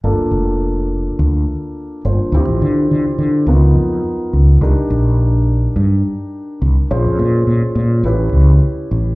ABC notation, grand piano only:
X:1
M:4/4
L:1/8
Q:"Swing 16ths" 1/4=105
K:Cmix
V:1 name="Grand piano"
[B,DFA]6- [B,DFA] [B,DFc] | [CEFG]4 [=B,^D^E^A]4 | [D_EGB]8 | [_DF_Ac]4 [^CEG=B]4 |]